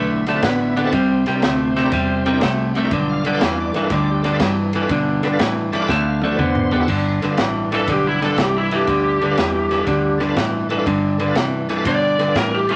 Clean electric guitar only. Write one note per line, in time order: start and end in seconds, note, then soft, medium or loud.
0.00 0.24 D3 medium
0.00 0.24 A3 medium
0.28 0.42 D3 medium
0.28 0.42 A3 medium
0.43 0.73 D3 medium
0.43 0.74 B3 medium
0.76 0.91 D3 medium
0.76 0.91 B3 medium
0.93 1.23 C3 medium
0.93 1.24 G3 medium
1.27 1.41 C3 medium
1.27 1.41 G3 medium
1.43 1.73 C3 medium
1.43 1.73 A3 medium
1.76 1.91 C3 medium
1.76 1.91 A3 medium
1.93 2.23 C3 medium
1.93 2.23 G3 loud
2.26 2.40 C3 medium
2.26 2.41 G3 medium
2.41 2.72 C3 medium
2.41 2.72 A3 medium
2.76 2.90 C3 medium
2.76 2.91 A3 loud
2.93 3.22 G2 loud
2.93 3.23 D3 medium
3.26 3.40 G2 medium
3.26 3.40 D3 medium
3.42 3.72 G2 medium
3.42 3.72 E3 loud
3.76 3.90 G2 medium
3.76 3.90 E3 loud
3.92 4.21 G2 medium
3.92 4.22 D3 loud
4.25 4.39 G2 medium
4.25 4.39 D3 medium
4.41 4.71 G2 medium
4.41 4.71 E3 medium
4.75 4.89 G2 medium
4.75 4.89 E3 loud
4.91 5.21 G2 loud
4.91 5.21 D3 loud
5.24 5.38 G2 medium
5.24 5.38 D3 medium
5.39 5.70 G2 medium
5.39 5.70 E3 loud
5.73 5.88 G2 medium
5.73 5.88 E3 medium
5.90 6.20 D3 medium
5.90 6.20 A3 loud
6.24 6.38 D3 medium
6.24 6.38 A3 medium
6.39 6.69 D3 medium
6.39 6.70 B3 medium
6.72 6.87 D3 medium
6.72 6.87 B3 medium
6.89 7.19 G2 medium
6.89 7.19 D3 medium
7.23 7.37 G2 medium
7.23 7.38 D3 medium
7.39 7.69 G2 medium
7.39 7.69 E3 medium
7.72 7.87 G2 medium
7.72 7.87 E3 medium
7.88 8.18 G2 medium
7.88 8.19 D3 medium
8.21 8.36 G2 medium
8.21 8.36 D3 medium
8.38 8.68 G2 medium
8.38 8.68 E3 medium
8.72 8.86 G2 medium
8.72 8.87 E3 medium
8.88 9.18 G2 medium
8.88 9.18 D3 loud
9.22 9.36 G2 medium
9.22 9.36 D3 medium
9.38 9.68 G2 medium
9.38 9.68 E3 medium
9.71 9.85 G2 medium
9.71 9.86 E3 medium
9.87 10.17 G2 medium
9.87 10.17 D3 loud
10.20 10.35 G2 medium
10.20 10.35 D3 loud
10.37 10.67 G2 medium
10.37 10.67 E3 loud
10.71 10.85 G2 medium
10.71 10.85 E3 medium
10.86 11.17 G2 medium
10.86 11.17 D3 loud
11.20 11.34 G2 medium
11.20 11.35 D3 medium
11.36 11.66 G2 medium
11.36 11.67 E3 loud
11.70 11.84 G2 medium
11.70 11.84 E3 medium
11.87 12.16 G2 medium
11.87 12.16 D3 medium
12.20 12.34 G2 medium
12.20 12.34 D3 medium
12.36 12.66 G2 medium
12.36 12.66 E3 medium
12.70 12.76 G2 medium
12.70 12.76 E3 medium